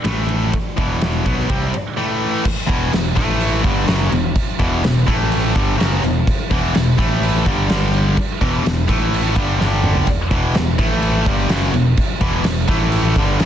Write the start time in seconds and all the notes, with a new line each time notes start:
0.04 A1 A2 E3 A3, snare, ride
0.29 ride
0.53 kick, ride
0.77 E1 E2 B2 E3, kick, ride
1.01 snare, ride
1.26 B1 B2 F#3 B3, kick, ride
1.39 snare
1.49 C2 C3 G3 C4, kick, ride
1.74 ride
1.97 A2 E3 A3
2.45 kick, crash
2.67 E1 E2 B2 E3, kick, crash
2.92 E1 E2 B2, snare, crash
3.15 A1 A2 E3 A3, kick, crash
3.41 crash
3.62 G1 G2 D3 G3, kick, crash
3.86 F#1 F#2 C#3 F#3, snare, crash
4.10 E1 E2 B2, crash
4.35 kick, crash
4.59 E1 E2 B2 E3, kick, crash
4.84 E1 E2 B2, snare, crash
5.06 A1 A2 E3 A3, kick, crash
5.32 crash
5.55 G1 G2 D3 G3, kick, crash
5.77 F#1 F#2 C#3 F#3, snare, crash
6.02 E1 E2 B2, crash
6.27 kick, crash
6.51 E1 E2 B2 E3, kick, crash
6.74 E1 E2 B2, snare, crash
6.98 A1 A2 E3 A3, kick, crash
7.23 crash
7.45 G1 G2 D3 G3, kick, crash
7.68 G1 G2 D3 G3, snare, crash
7.94 crash
8.17 kick, crash
8.41 E1 E2 B2 E3, kick, crash
8.63 E1 E2 B2, snare, crash
8.88 A1 A2 E3 A3, kick, crash
9.14 crash
9.34 G1 G2 D3 G3, kick, crash
9.59 G1 G2 D3 G3, snare
9.84 mid tom
9.95 floor tom
10.07 kick, crash
10.31 E1 E2 B2 E3, kick, crash
10.55 E1 E2 B2, snare, crash
10.78 A1 A2 E3 A3, kick, crash
11.02 crash
11.26 G1 G2 D3 G3, kick, crash
11.49 F#1 F#2 C#3 F#3, snare, crash
11.72 E1 E2 B2, crash
11.97 kick, crash
12.21 E1 E2 B2 E3, kick, crash
12.44 E1 E2 B2, snare, crash
12.67 A1 A2 E3 A3, kick, crash
12.92 crash
13.16 G2 D3 G3, kick, crash
13.40 F#2 C#3 F#3, snare, crash